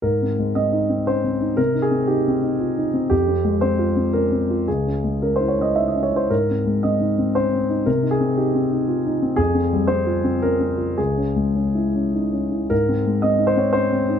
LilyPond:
\new Staff \with { instrumentName = "Grand piano" } { \time 3/4 \key aes \major \tempo 4 = 116 << { bes'4 ees''4 c''4 | bes'8 aes'8 g'4. r8 | g'4 c''4 bes'4 | aes'4 bes'16 c''16 des''16 ees''16 fes''16 ees''16 des''16 c''16 |
bes'4 ees''4 c''4 | bes'8 aes'8 g'4. r8 | aes'4 c''4 bes'4 | aes'2 r4 |
bes'4 ees''8 c''16 des''16 c''4 | } \\ { \tuplet 3/2 { aes,8 c'8 aes8 c'8 ees'8 c'8 des'8 c'8 ees'8 } | \tuplet 3/2 { c8 ees'8 c'8 ees'8 c'8 ees'8 f'8 ees'8 c'8 } | \tuplet 3/2 { f,8 c'8 aes8 c'8 f'8 c'8 des'8 c'8 f'8 } | \tuplet 3/2 { des,8 des'8 aes8 des'8 fes'8 des'8 ees'8 des'8 fes'8 } |
\tuplet 3/2 { aes,8 c'8 aes8 c'8 ees'8 c'8 des'8 c'8 ees'8 } | \tuplet 3/2 { c8 ees'8 c'8 ees'8 c'8 ees'8 f'8 ees'8 c'8 } | \tuplet 3/2 { f,8 c'8 g8 c'8 f'8 c'8 des'8 c'8 f'8 } | \tuplet 3/2 { des,8 des'8 aes8 des'8 fes'8 des'8 ees'8 des'8 fes'8 } |
\tuplet 3/2 { aes,8 c'8 aes8 c'8 ees'8 c'8 des'8 c'8 ees'8 } | } >> }